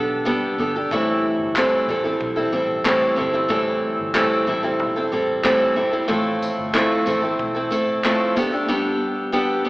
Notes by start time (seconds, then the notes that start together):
Already playing: B1 B3 D4 G4 A4
0.25 G3 B3 D4 G4 A4
0.58 G1 B3 D4 G4 A4
0.76 D4 G4 A4
0.91 A1 A2 E3 G3 C4 E4 A4, kick
1.39 G1
1.56 A2 E3 G3 C4 E4 A4, clap
1.88 A1 G3 C4 E4 A4
2.04 G3 C4 E4 A4
2.20 B1, kick
2.36 G3 C4 E4 A4
2.52 A1 G3 C4 E4 A4
2.84 A2 E3 G3 C4 E4 A4, clap
3.16 G1 G3 C4 E4 A4
3.33 G3 C4 E4 A4
3.48 A1 A2 E3 G3 C4 E4 A4, kick
3.99 G1
4.14 A2 E3 G3 C4 E4 A4, clap
4.46 A1 G3 C4 E4 A4
4.63 G3 C4 E4 A4
4.79 B1, kick
4.96 G3 C4 E4 A4
5.12 A1 G3 C4 E4 A4
5.43 A2 E3 G3 C4 E4 A4, clap
5.76 G1 G3 C4 E4 A4
5.92 G3 C4 E4 A4
6.08 A1 A2 F3 A3 C4 E4 A4, kick
6.42 tambourine
6.58 G1
6.73 A2 F3 A3 C4 E4 A4, clap
7.06 A1 A3 C4 E4 A4, tambourine
7.22 A3 C4 E4 A4
7.39 B1, kick
7.55 A3 C4 E4 A4
7.71 A1 A3 C4 E4 A4, tambourine
8.04 A2 F3 A3 C4 E4 A4, clap
8.36 G1 B3 D4 G4 A4, kick, tambourine
8.52 D4 G4 A4
8.68 G3 B3 D4 G4 A4
9.32 G3 B3 D4 G4 A4
9.65 B3 D4 G4